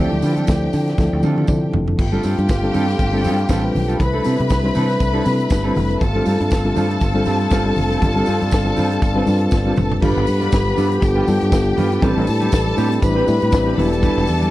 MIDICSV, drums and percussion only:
0, 0, Header, 1, 2, 480
1, 0, Start_track
1, 0, Tempo, 502092
1, 1901, Time_signature, 4, 2, 24, 8
1, 13868, End_track
2, 0, Start_track
2, 0, Title_t, "Drums"
2, 110, Note_on_c, 9, 63, 73
2, 205, Note_off_c, 9, 63, 0
2, 213, Note_on_c, 9, 46, 61
2, 213, Note_on_c, 9, 54, 63
2, 216, Note_on_c, 9, 62, 39
2, 309, Note_off_c, 9, 46, 0
2, 309, Note_off_c, 9, 54, 0
2, 311, Note_off_c, 9, 62, 0
2, 351, Note_on_c, 9, 42, 39
2, 356, Note_on_c, 9, 63, 75
2, 446, Note_off_c, 9, 42, 0
2, 452, Note_off_c, 9, 63, 0
2, 452, Note_on_c, 9, 54, 93
2, 458, Note_on_c, 9, 62, 29
2, 461, Note_on_c, 9, 36, 109
2, 463, Note_on_c, 9, 42, 70
2, 473, Note_on_c, 9, 38, 96
2, 547, Note_off_c, 9, 54, 0
2, 554, Note_off_c, 9, 62, 0
2, 557, Note_off_c, 9, 36, 0
2, 558, Note_off_c, 9, 42, 0
2, 569, Note_off_c, 9, 38, 0
2, 596, Note_on_c, 9, 63, 60
2, 692, Note_off_c, 9, 63, 0
2, 698, Note_on_c, 9, 54, 59
2, 702, Note_on_c, 9, 46, 64
2, 702, Note_on_c, 9, 64, 70
2, 794, Note_off_c, 9, 54, 0
2, 797, Note_off_c, 9, 46, 0
2, 798, Note_off_c, 9, 64, 0
2, 835, Note_on_c, 9, 42, 44
2, 843, Note_on_c, 9, 38, 35
2, 931, Note_off_c, 9, 42, 0
2, 937, Note_on_c, 9, 54, 47
2, 939, Note_off_c, 9, 38, 0
2, 939, Note_on_c, 9, 36, 105
2, 950, Note_on_c, 9, 38, 50
2, 1032, Note_off_c, 9, 54, 0
2, 1034, Note_off_c, 9, 36, 0
2, 1046, Note_off_c, 9, 38, 0
2, 1174, Note_on_c, 9, 54, 57
2, 1177, Note_on_c, 9, 62, 35
2, 1177, Note_on_c, 9, 63, 67
2, 1180, Note_on_c, 9, 48, 75
2, 1269, Note_off_c, 9, 54, 0
2, 1272, Note_off_c, 9, 62, 0
2, 1272, Note_off_c, 9, 63, 0
2, 1276, Note_off_c, 9, 48, 0
2, 1317, Note_on_c, 9, 48, 56
2, 1409, Note_on_c, 9, 54, 79
2, 1411, Note_on_c, 9, 62, 36
2, 1412, Note_off_c, 9, 48, 0
2, 1417, Note_on_c, 9, 36, 105
2, 1418, Note_on_c, 9, 47, 91
2, 1505, Note_off_c, 9, 54, 0
2, 1507, Note_off_c, 9, 62, 0
2, 1513, Note_off_c, 9, 36, 0
2, 1514, Note_off_c, 9, 47, 0
2, 1657, Note_on_c, 9, 62, 38
2, 1657, Note_on_c, 9, 63, 78
2, 1657, Note_on_c, 9, 64, 78
2, 1659, Note_on_c, 9, 43, 97
2, 1752, Note_off_c, 9, 62, 0
2, 1752, Note_off_c, 9, 63, 0
2, 1752, Note_off_c, 9, 64, 0
2, 1755, Note_off_c, 9, 43, 0
2, 1794, Note_on_c, 9, 43, 83
2, 1890, Note_off_c, 9, 43, 0
2, 1897, Note_on_c, 9, 62, 33
2, 1897, Note_on_c, 9, 64, 84
2, 1901, Note_on_c, 9, 36, 102
2, 1903, Note_on_c, 9, 49, 99
2, 1992, Note_off_c, 9, 62, 0
2, 1992, Note_off_c, 9, 64, 0
2, 1996, Note_off_c, 9, 36, 0
2, 1998, Note_off_c, 9, 49, 0
2, 2033, Note_on_c, 9, 63, 69
2, 2129, Note_off_c, 9, 63, 0
2, 2134, Note_on_c, 9, 54, 58
2, 2137, Note_on_c, 9, 46, 62
2, 2143, Note_on_c, 9, 62, 40
2, 2230, Note_off_c, 9, 54, 0
2, 2232, Note_off_c, 9, 46, 0
2, 2239, Note_off_c, 9, 62, 0
2, 2278, Note_on_c, 9, 42, 46
2, 2282, Note_on_c, 9, 63, 83
2, 2373, Note_off_c, 9, 42, 0
2, 2377, Note_off_c, 9, 63, 0
2, 2378, Note_on_c, 9, 54, 91
2, 2384, Note_on_c, 9, 36, 115
2, 2386, Note_on_c, 9, 42, 66
2, 2397, Note_on_c, 9, 38, 106
2, 2473, Note_off_c, 9, 54, 0
2, 2480, Note_off_c, 9, 36, 0
2, 2482, Note_off_c, 9, 42, 0
2, 2492, Note_off_c, 9, 38, 0
2, 2621, Note_on_c, 9, 54, 51
2, 2625, Note_on_c, 9, 46, 57
2, 2625, Note_on_c, 9, 62, 30
2, 2625, Note_on_c, 9, 64, 66
2, 2717, Note_off_c, 9, 54, 0
2, 2720, Note_off_c, 9, 46, 0
2, 2721, Note_off_c, 9, 62, 0
2, 2721, Note_off_c, 9, 64, 0
2, 2759, Note_on_c, 9, 42, 44
2, 2768, Note_on_c, 9, 38, 37
2, 2855, Note_off_c, 9, 42, 0
2, 2859, Note_on_c, 9, 54, 50
2, 2861, Note_on_c, 9, 36, 99
2, 2861, Note_on_c, 9, 42, 54
2, 2863, Note_off_c, 9, 38, 0
2, 2873, Note_on_c, 9, 62, 33
2, 2954, Note_off_c, 9, 54, 0
2, 2956, Note_off_c, 9, 36, 0
2, 2957, Note_off_c, 9, 42, 0
2, 2969, Note_off_c, 9, 62, 0
2, 3096, Note_on_c, 9, 62, 37
2, 3096, Note_on_c, 9, 63, 75
2, 3099, Note_on_c, 9, 54, 55
2, 3104, Note_on_c, 9, 46, 69
2, 3192, Note_off_c, 9, 62, 0
2, 3192, Note_off_c, 9, 63, 0
2, 3194, Note_off_c, 9, 54, 0
2, 3200, Note_off_c, 9, 46, 0
2, 3238, Note_on_c, 9, 42, 46
2, 3333, Note_off_c, 9, 42, 0
2, 3334, Note_on_c, 9, 54, 85
2, 3336, Note_on_c, 9, 62, 44
2, 3339, Note_on_c, 9, 42, 68
2, 3340, Note_on_c, 9, 36, 106
2, 3351, Note_on_c, 9, 38, 124
2, 3429, Note_off_c, 9, 54, 0
2, 3432, Note_off_c, 9, 62, 0
2, 3434, Note_off_c, 9, 42, 0
2, 3435, Note_off_c, 9, 36, 0
2, 3446, Note_off_c, 9, 38, 0
2, 3585, Note_on_c, 9, 62, 37
2, 3585, Note_on_c, 9, 63, 85
2, 3585, Note_on_c, 9, 64, 89
2, 3588, Note_on_c, 9, 46, 61
2, 3681, Note_off_c, 9, 62, 0
2, 3681, Note_off_c, 9, 63, 0
2, 3681, Note_off_c, 9, 64, 0
2, 3684, Note_off_c, 9, 46, 0
2, 3721, Note_on_c, 9, 42, 44
2, 3817, Note_off_c, 9, 42, 0
2, 3822, Note_on_c, 9, 54, 32
2, 3822, Note_on_c, 9, 64, 77
2, 3823, Note_on_c, 9, 36, 111
2, 3826, Note_on_c, 9, 42, 76
2, 3917, Note_off_c, 9, 64, 0
2, 3918, Note_off_c, 9, 54, 0
2, 3919, Note_off_c, 9, 36, 0
2, 3921, Note_off_c, 9, 42, 0
2, 3956, Note_on_c, 9, 63, 69
2, 4052, Note_off_c, 9, 63, 0
2, 4055, Note_on_c, 9, 46, 68
2, 4060, Note_on_c, 9, 54, 64
2, 4062, Note_on_c, 9, 62, 43
2, 4151, Note_off_c, 9, 46, 0
2, 4155, Note_off_c, 9, 54, 0
2, 4157, Note_off_c, 9, 62, 0
2, 4200, Note_on_c, 9, 42, 39
2, 4201, Note_on_c, 9, 63, 82
2, 4295, Note_off_c, 9, 42, 0
2, 4296, Note_off_c, 9, 63, 0
2, 4300, Note_on_c, 9, 54, 92
2, 4307, Note_on_c, 9, 36, 105
2, 4308, Note_on_c, 9, 42, 66
2, 4319, Note_on_c, 9, 38, 117
2, 4395, Note_off_c, 9, 54, 0
2, 4403, Note_off_c, 9, 36, 0
2, 4404, Note_off_c, 9, 42, 0
2, 4415, Note_off_c, 9, 38, 0
2, 4540, Note_on_c, 9, 54, 52
2, 4546, Note_on_c, 9, 62, 31
2, 4546, Note_on_c, 9, 64, 72
2, 4549, Note_on_c, 9, 46, 58
2, 4635, Note_off_c, 9, 54, 0
2, 4641, Note_off_c, 9, 62, 0
2, 4641, Note_off_c, 9, 64, 0
2, 4645, Note_off_c, 9, 46, 0
2, 4682, Note_on_c, 9, 42, 48
2, 4691, Note_on_c, 9, 38, 32
2, 4778, Note_off_c, 9, 42, 0
2, 4780, Note_on_c, 9, 42, 55
2, 4781, Note_on_c, 9, 54, 56
2, 4784, Note_on_c, 9, 36, 104
2, 4786, Note_off_c, 9, 38, 0
2, 4876, Note_off_c, 9, 42, 0
2, 4877, Note_off_c, 9, 54, 0
2, 4879, Note_off_c, 9, 36, 0
2, 5023, Note_on_c, 9, 62, 38
2, 5023, Note_on_c, 9, 63, 79
2, 5024, Note_on_c, 9, 46, 67
2, 5024, Note_on_c, 9, 54, 60
2, 5118, Note_off_c, 9, 62, 0
2, 5118, Note_off_c, 9, 63, 0
2, 5119, Note_off_c, 9, 46, 0
2, 5119, Note_off_c, 9, 54, 0
2, 5161, Note_on_c, 9, 42, 42
2, 5257, Note_off_c, 9, 42, 0
2, 5257, Note_on_c, 9, 54, 87
2, 5263, Note_on_c, 9, 62, 38
2, 5264, Note_on_c, 9, 36, 113
2, 5266, Note_on_c, 9, 42, 64
2, 5278, Note_on_c, 9, 38, 127
2, 5353, Note_off_c, 9, 54, 0
2, 5359, Note_off_c, 9, 62, 0
2, 5360, Note_off_c, 9, 36, 0
2, 5361, Note_off_c, 9, 42, 0
2, 5373, Note_off_c, 9, 38, 0
2, 5497, Note_on_c, 9, 54, 34
2, 5509, Note_on_c, 9, 62, 34
2, 5509, Note_on_c, 9, 63, 82
2, 5509, Note_on_c, 9, 64, 90
2, 5512, Note_on_c, 9, 46, 63
2, 5593, Note_off_c, 9, 54, 0
2, 5605, Note_off_c, 9, 62, 0
2, 5605, Note_off_c, 9, 63, 0
2, 5605, Note_off_c, 9, 64, 0
2, 5608, Note_off_c, 9, 46, 0
2, 5646, Note_on_c, 9, 42, 46
2, 5742, Note_off_c, 9, 42, 0
2, 5745, Note_on_c, 9, 62, 36
2, 5745, Note_on_c, 9, 64, 82
2, 5747, Note_on_c, 9, 36, 102
2, 5749, Note_on_c, 9, 42, 71
2, 5749, Note_on_c, 9, 54, 36
2, 5840, Note_off_c, 9, 62, 0
2, 5840, Note_off_c, 9, 64, 0
2, 5842, Note_off_c, 9, 36, 0
2, 5844, Note_off_c, 9, 54, 0
2, 5845, Note_off_c, 9, 42, 0
2, 5880, Note_on_c, 9, 63, 68
2, 5976, Note_off_c, 9, 63, 0
2, 5982, Note_on_c, 9, 54, 61
2, 5986, Note_on_c, 9, 46, 60
2, 5989, Note_on_c, 9, 62, 38
2, 6077, Note_off_c, 9, 54, 0
2, 6081, Note_off_c, 9, 46, 0
2, 6084, Note_off_c, 9, 62, 0
2, 6123, Note_on_c, 9, 63, 80
2, 6124, Note_on_c, 9, 42, 41
2, 6219, Note_off_c, 9, 63, 0
2, 6220, Note_off_c, 9, 42, 0
2, 6220, Note_on_c, 9, 54, 88
2, 6223, Note_on_c, 9, 62, 29
2, 6231, Note_on_c, 9, 36, 115
2, 6232, Note_on_c, 9, 42, 62
2, 6242, Note_on_c, 9, 38, 120
2, 6316, Note_off_c, 9, 54, 0
2, 6319, Note_off_c, 9, 62, 0
2, 6326, Note_off_c, 9, 36, 0
2, 6327, Note_off_c, 9, 42, 0
2, 6338, Note_off_c, 9, 38, 0
2, 6463, Note_on_c, 9, 64, 75
2, 6467, Note_on_c, 9, 54, 62
2, 6474, Note_on_c, 9, 46, 56
2, 6558, Note_off_c, 9, 64, 0
2, 6562, Note_off_c, 9, 54, 0
2, 6570, Note_off_c, 9, 46, 0
2, 6604, Note_on_c, 9, 42, 50
2, 6698, Note_on_c, 9, 54, 56
2, 6700, Note_off_c, 9, 42, 0
2, 6704, Note_on_c, 9, 42, 58
2, 6705, Note_on_c, 9, 36, 96
2, 6794, Note_off_c, 9, 54, 0
2, 6800, Note_off_c, 9, 42, 0
2, 6801, Note_off_c, 9, 36, 0
2, 6936, Note_on_c, 9, 62, 38
2, 6936, Note_on_c, 9, 63, 79
2, 6937, Note_on_c, 9, 54, 53
2, 6947, Note_on_c, 9, 46, 70
2, 7031, Note_off_c, 9, 62, 0
2, 7031, Note_off_c, 9, 63, 0
2, 7032, Note_off_c, 9, 54, 0
2, 7043, Note_off_c, 9, 46, 0
2, 7083, Note_on_c, 9, 42, 48
2, 7176, Note_on_c, 9, 54, 81
2, 7178, Note_off_c, 9, 42, 0
2, 7179, Note_on_c, 9, 62, 41
2, 7183, Note_on_c, 9, 42, 68
2, 7184, Note_on_c, 9, 36, 113
2, 7196, Note_on_c, 9, 38, 124
2, 7272, Note_off_c, 9, 54, 0
2, 7274, Note_off_c, 9, 62, 0
2, 7279, Note_off_c, 9, 36, 0
2, 7279, Note_off_c, 9, 42, 0
2, 7291, Note_off_c, 9, 38, 0
2, 7416, Note_on_c, 9, 54, 38
2, 7425, Note_on_c, 9, 63, 93
2, 7425, Note_on_c, 9, 64, 86
2, 7432, Note_on_c, 9, 46, 59
2, 7512, Note_off_c, 9, 54, 0
2, 7521, Note_off_c, 9, 63, 0
2, 7521, Note_off_c, 9, 64, 0
2, 7528, Note_off_c, 9, 46, 0
2, 7567, Note_on_c, 9, 42, 44
2, 7663, Note_off_c, 9, 42, 0
2, 7665, Note_on_c, 9, 54, 38
2, 7665, Note_on_c, 9, 64, 83
2, 7668, Note_on_c, 9, 36, 96
2, 7670, Note_on_c, 9, 42, 69
2, 7761, Note_off_c, 9, 54, 0
2, 7761, Note_off_c, 9, 64, 0
2, 7763, Note_off_c, 9, 36, 0
2, 7765, Note_off_c, 9, 42, 0
2, 7801, Note_on_c, 9, 63, 72
2, 7896, Note_off_c, 9, 63, 0
2, 7896, Note_on_c, 9, 54, 66
2, 7904, Note_on_c, 9, 46, 60
2, 7992, Note_off_c, 9, 54, 0
2, 8000, Note_off_c, 9, 46, 0
2, 8045, Note_on_c, 9, 42, 42
2, 8046, Note_on_c, 9, 63, 80
2, 8138, Note_on_c, 9, 54, 109
2, 8141, Note_off_c, 9, 42, 0
2, 8141, Note_off_c, 9, 63, 0
2, 8150, Note_on_c, 9, 36, 119
2, 8152, Note_on_c, 9, 62, 33
2, 8154, Note_on_c, 9, 42, 67
2, 8164, Note_on_c, 9, 38, 116
2, 8234, Note_off_c, 9, 54, 0
2, 8245, Note_off_c, 9, 36, 0
2, 8247, Note_off_c, 9, 62, 0
2, 8249, Note_off_c, 9, 42, 0
2, 8260, Note_off_c, 9, 38, 0
2, 8382, Note_on_c, 9, 54, 54
2, 8385, Note_on_c, 9, 62, 37
2, 8385, Note_on_c, 9, 64, 73
2, 8391, Note_on_c, 9, 46, 55
2, 8477, Note_off_c, 9, 54, 0
2, 8480, Note_off_c, 9, 62, 0
2, 8480, Note_off_c, 9, 64, 0
2, 8487, Note_off_c, 9, 46, 0
2, 8523, Note_on_c, 9, 42, 49
2, 8619, Note_off_c, 9, 42, 0
2, 8622, Note_on_c, 9, 54, 53
2, 8624, Note_on_c, 9, 36, 111
2, 8624, Note_on_c, 9, 42, 57
2, 8717, Note_off_c, 9, 54, 0
2, 8720, Note_off_c, 9, 36, 0
2, 8720, Note_off_c, 9, 42, 0
2, 8856, Note_on_c, 9, 62, 34
2, 8856, Note_on_c, 9, 63, 82
2, 8860, Note_on_c, 9, 54, 60
2, 8863, Note_on_c, 9, 46, 76
2, 8952, Note_off_c, 9, 62, 0
2, 8952, Note_off_c, 9, 63, 0
2, 8956, Note_off_c, 9, 54, 0
2, 8959, Note_off_c, 9, 46, 0
2, 8996, Note_on_c, 9, 42, 48
2, 9091, Note_off_c, 9, 42, 0
2, 9092, Note_on_c, 9, 54, 93
2, 9102, Note_on_c, 9, 36, 122
2, 9115, Note_on_c, 9, 38, 69
2, 9187, Note_off_c, 9, 54, 0
2, 9197, Note_off_c, 9, 36, 0
2, 9211, Note_off_c, 9, 38, 0
2, 9333, Note_on_c, 9, 54, 39
2, 9345, Note_on_c, 9, 45, 102
2, 9346, Note_on_c, 9, 62, 36
2, 9346, Note_on_c, 9, 63, 88
2, 9346, Note_on_c, 9, 64, 89
2, 9429, Note_off_c, 9, 54, 0
2, 9441, Note_off_c, 9, 45, 0
2, 9442, Note_off_c, 9, 62, 0
2, 9442, Note_off_c, 9, 63, 0
2, 9442, Note_off_c, 9, 64, 0
2, 9480, Note_on_c, 9, 43, 96
2, 9575, Note_off_c, 9, 43, 0
2, 9582, Note_on_c, 9, 54, 39
2, 9582, Note_on_c, 9, 62, 38
2, 9582, Note_on_c, 9, 64, 84
2, 9583, Note_on_c, 9, 36, 104
2, 9583, Note_on_c, 9, 49, 96
2, 9677, Note_off_c, 9, 62, 0
2, 9677, Note_off_c, 9, 64, 0
2, 9678, Note_off_c, 9, 54, 0
2, 9679, Note_off_c, 9, 36, 0
2, 9679, Note_off_c, 9, 49, 0
2, 9718, Note_on_c, 9, 63, 82
2, 9813, Note_off_c, 9, 63, 0
2, 9816, Note_on_c, 9, 46, 65
2, 9816, Note_on_c, 9, 54, 65
2, 9826, Note_on_c, 9, 62, 42
2, 9912, Note_off_c, 9, 46, 0
2, 9912, Note_off_c, 9, 54, 0
2, 9922, Note_off_c, 9, 62, 0
2, 9956, Note_on_c, 9, 42, 43
2, 9964, Note_on_c, 9, 63, 81
2, 10051, Note_off_c, 9, 42, 0
2, 10059, Note_on_c, 9, 54, 113
2, 10060, Note_off_c, 9, 63, 0
2, 10064, Note_on_c, 9, 36, 117
2, 10066, Note_on_c, 9, 42, 67
2, 10068, Note_on_c, 9, 62, 30
2, 10076, Note_on_c, 9, 38, 126
2, 10154, Note_off_c, 9, 54, 0
2, 10160, Note_off_c, 9, 36, 0
2, 10161, Note_off_c, 9, 42, 0
2, 10164, Note_off_c, 9, 62, 0
2, 10172, Note_off_c, 9, 38, 0
2, 10199, Note_on_c, 9, 63, 57
2, 10295, Note_off_c, 9, 63, 0
2, 10304, Note_on_c, 9, 54, 58
2, 10307, Note_on_c, 9, 46, 63
2, 10308, Note_on_c, 9, 62, 32
2, 10400, Note_off_c, 9, 54, 0
2, 10402, Note_off_c, 9, 46, 0
2, 10403, Note_off_c, 9, 62, 0
2, 10435, Note_on_c, 9, 42, 51
2, 10531, Note_off_c, 9, 42, 0
2, 10537, Note_on_c, 9, 42, 65
2, 10538, Note_on_c, 9, 36, 107
2, 10540, Note_on_c, 9, 54, 56
2, 10633, Note_off_c, 9, 42, 0
2, 10634, Note_off_c, 9, 36, 0
2, 10636, Note_off_c, 9, 54, 0
2, 10776, Note_on_c, 9, 62, 34
2, 10776, Note_on_c, 9, 63, 86
2, 10779, Note_on_c, 9, 46, 73
2, 10781, Note_on_c, 9, 54, 58
2, 10872, Note_off_c, 9, 62, 0
2, 10872, Note_off_c, 9, 63, 0
2, 10875, Note_off_c, 9, 46, 0
2, 10876, Note_off_c, 9, 54, 0
2, 10908, Note_on_c, 9, 42, 48
2, 11004, Note_off_c, 9, 42, 0
2, 11012, Note_on_c, 9, 42, 65
2, 11015, Note_on_c, 9, 36, 127
2, 11016, Note_on_c, 9, 54, 89
2, 11024, Note_on_c, 9, 38, 123
2, 11108, Note_off_c, 9, 42, 0
2, 11110, Note_off_c, 9, 36, 0
2, 11112, Note_off_c, 9, 54, 0
2, 11120, Note_off_c, 9, 38, 0
2, 11257, Note_on_c, 9, 54, 36
2, 11259, Note_on_c, 9, 63, 85
2, 11259, Note_on_c, 9, 64, 82
2, 11262, Note_on_c, 9, 46, 61
2, 11352, Note_off_c, 9, 54, 0
2, 11354, Note_off_c, 9, 63, 0
2, 11354, Note_off_c, 9, 64, 0
2, 11358, Note_off_c, 9, 46, 0
2, 11393, Note_on_c, 9, 42, 48
2, 11489, Note_off_c, 9, 42, 0
2, 11494, Note_on_c, 9, 36, 110
2, 11494, Note_on_c, 9, 42, 70
2, 11494, Note_on_c, 9, 62, 39
2, 11494, Note_on_c, 9, 64, 81
2, 11495, Note_on_c, 9, 54, 38
2, 11590, Note_off_c, 9, 36, 0
2, 11590, Note_off_c, 9, 42, 0
2, 11590, Note_off_c, 9, 62, 0
2, 11590, Note_off_c, 9, 64, 0
2, 11591, Note_off_c, 9, 54, 0
2, 11632, Note_on_c, 9, 63, 80
2, 11727, Note_off_c, 9, 63, 0
2, 11729, Note_on_c, 9, 46, 67
2, 11730, Note_on_c, 9, 54, 62
2, 11738, Note_on_c, 9, 62, 40
2, 11824, Note_off_c, 9, 46, 0
2, 11826, Note_off_c, 9, 54, 0
2, 11834, Note_off_c, 9, 62, 0
2, 11868, Note_on_c, 9, 42, 44
2, 11876, Note_on_c, 9, 63, 85
2, 11964, Note_off_c, 9, 42, 0
2, 11969, Note_on_c, 9, 54, 104
2, 11972, Note_off_c, 9, 63, 0
2, 11976, Note_on_c, 9, 36, 115
2, 11976, Note_on_c, 9, 42, 80
2, 11986, Note_on_c, 9, 38, 117
2, 12064, Note_off_c, 9, 54, 0
2, 12071, Note_off_c, 9, 42, 0
2, 12072, Note_off_c, 9, 36, 0
2, 12082, Note_off_c, 9, 38, 0
2, 12111, Note_on_c, 9, 63, 64
2, 12207, Note_off_c, 9, 63, 0
2, 12215, Note_on_c, 9, 54, 57
2, 12216, Note_on_c, 9, 46, 65
2, 12218, Note_on_c, 9, 62, 36
2, 12310, Note_off_c, 9, 54, 0
2, 12311, Note_off_c, 9, 46, 0
2, 12313, Note_off_c, 9, 62, 0
2, 12350, Note_on_c, 9, 42, 51
2, 12445, Note_off_c, 9, 42, 0
2, 12451, Note_on_c, 9, 54, 60
2, 12452, Note_on_c, 9, 36, 108
2, 12452, Note_on_c, 9, 42, 59
2, 12463, Note_on_c, 9, 62, 39
2, 12546, Note_off_c, 9, 54, 0
2, 12547, Note_off_c, 9, 36, 0
2, 12548, Note_off_c, 9, 42, 0
2, 12558, Note_off_c, 9, 62, 0
2, 12687, Note_on_c, 9, 62, 36
2, 12687, Note_on_c, 9, 63, 74
2, 12692, Note_on_c, 9, 54, 65
2, 12694, Note_on_c, 9, 46, 74
2, 12782, Note_off_c, 9, 62, 0
2, 12782, Note_off_c, 9, 63, 0
2, 12788, Note_off_c, 9, 54, 0
2, 12790, Note_off_c, 9, 46, 0
2, 12829, Note_on_c, 9, 42, 50
2, 12924, Note_off_c, 9, 42, 0
2, 12926, Note_on_c, 9, 54, 85
2, 12932, Note_on_c, 9, 36, 127
2, 12937, Note_on_c, 9, 42, 71
2, 12949, Note_on_c, 9, 38, 127
2, 13022, Note_off_c, 9, 54, 0
2, 13027, Note_off_c, 9, 36, 0
2, 13033, Note_off_c, 9, 42, 0
2, 13045, Note_off_c, 9, 38, 0
2, 13172, Note_on_c, 9, 63, 88
2, 13172, Note_on_c, 9, 64, 86
2, 13184, Note_on_c, 9, 46, 67
2, 13267, Note_off_c, 9, 63, 0
2, 13267, Note_off_c, 9, 64, 0
2, 13279, Note_off_c, 9, 46, 0
2, 13313, Note_on_c, 9, 42, 46
2, 13409, Note_off_c, 9, 42, 0
2, 13409, Note_on_c, 9, 62, 38
2, 13409, Note_on_c, 9, 64, 87
2, 13412, Note_on_c, 9, 36, 107
2, 13412, Note_on_c, 9, 54, 35
2, 13413, Note_on_c, 9, 42, 72
2, 13504, Note_off_c, 9, 62, 0
2, 13504, Note_off_c, 9, 64, 0
2, 13507, Note_off_c, 9, 36, 0
2, 13507, Note_off_c, 9, 54, 0
2, 13509, Note_off_c, 9, 42, 0
2, 13546, Note_on_c, 9, 63, 82
2, 13642, Note_off_c, 9, 63, 0
2, 13644, Note_on_c, 9, 54, 69
2, 13650, Note_on_c, 9, 46, 67
2, 13740, Note_off_c, 9, 54, 0
2, 13745, Note_off_c, 9, 46, 0
2, 13790, Note_on_c, 9, 42, 45
2, 13792, Note_on_c, 9, 63, 82
2, 13868, Note_off_c, 9, 42, 0
2, 13868, Note_off_c, 9, 63, 0
2, 13868, End_track
0, 0, End_of_file